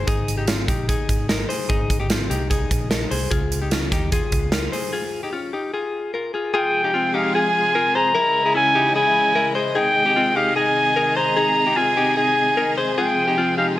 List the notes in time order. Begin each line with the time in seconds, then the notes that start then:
0.07 G#1 D#4 G#4, kick, closed hi-hat
0.28 closed hi-hat
0.38 D#4 G4
0.48 C4 F4, snare, closed hi-hat
0.68 A#1 D#4 G4, kick, closed hi-hat
0.89 D#4 G#4, kick, closed hi-hat
1.09 G#1, kick, closed hi-hat
1.29 D#4 A#4, snare, closed hi-hat
1.49 G#4 C5, open hi-hat
1.69 G#1 D#4 G#4, kick, closed hi-hat
1.90 kick, closed hi-hat
2.00 D#4 G4
2.10 C4 F4, snare, closed hi-hat
2.30 C2 D#4 G4, closed hi-hat
2.50 D#4 G#4, kick, closed hi-hat
2.71 A#1, kick, closed hi-hat
2.91 D#4 A#4, snare, closed hi-hat
3.11 C2 G#4 C5, open hi-hat
3.31 C#2 F4 G#4, kick, closed hi-hat
3.52 closed hi-hat
3.62 D#4 G4
3.71 C#4 F4, snare, closed hi-hat
3.92 D#2 D#4 G4, kick, snare, closed hi-hat
4.12 F4 G#4, kick, closed hi-hat
4.32 C#2, kick, closed hi-hat
4.52 F4 A#4, snare, closed hi-hat
4.72 G#4 C5, open hi-hat
4.93 F4 G#4
5.23 D#4 G4
5.33 C#4 F4
5.53 D#4 G4
5.74 F4 G#4
6.14 F4 A#4
6.34 F4 G#4
6.54 C3 F3 G#3 F4 G#4 G5
6.84 D#4 G4
6.94 C4 F4
7.14 D#4 G4 F5
7.34 F4 G#4 G#5
7.75 F4 A#4
7.95 G#4 C5 A#5
8.15 C#3 E3 G#3 E4 A#4 D#5
8.45 E4 G#4
8.55 C#4 E4 G#5
8.75 D#4 G4
8.96 E4 G#4 G#5
9.35 E4 A#4
9.55 G#4 C5
9.75 C3 D#3 D#4 G#4 G5
10.06 D#4 G4
10.16 C4 F4
10.36 D#4 G4 F5
10.56 D#4 G#4 G#5
10.96 D#4 A#4
11.16 G#4 C5 A#5
11.37 D#4 G#4
11.67 D#4 G4
11.76 C4 F4 G#5
11.97 D#4 G4
12.17 D#4 G#4 G#5
12.57 D#4 A#4
12.78 G#4 C5
12.98 F3 G#3 F4 G#4 G5
13.28 D#4 G4
13.38 C4 F4
13.57 D#4 G4 F5